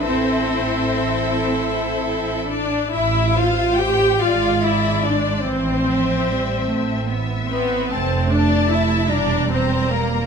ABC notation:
X:1
M:6/8
L:1/16
Q:3/8=48
K:Am
V:1 name="Violin section"
c8- c z3 | z2 c4 d2 d4 | z2 e6 e4 | a2 a4 _b2 b4 |]
V:2 name="Violin section"
[Ae]8- [Ae]2 d2 | e2 f2 g2 f2 e2 d2 | c8 z2 B2 | c2 d2 e2 d2 c2 _B2 |]
V:3 name="Viola section"
[CE]8- [CE]2 D2 | E2 F2 G2 F2 E2 D2 | C8 z2 B,2 | C2 D2 E2 D2 C2 _B,2 |]
V:4 name="Cello section" clef=bass
C6 z6 | z6 ^G,6 | E,2 F,2 G,2 A,2 B,2 C2 | A,6 G,6 |]
V:5 name="Double bass section" clef=bass
A,,,8- A,,,3 z | A,,,6 ^G,,,6 | A,,,6 A,,,6 | F,,,6 E,,,6 |]